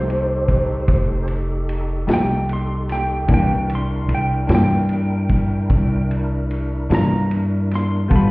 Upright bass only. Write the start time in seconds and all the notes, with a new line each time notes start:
Already playing: C2
0.88 F1
2.07 C2
3.29 C2
4.08 C2
4.49 G2
5.70 C2
6.90 G2
8.11 G1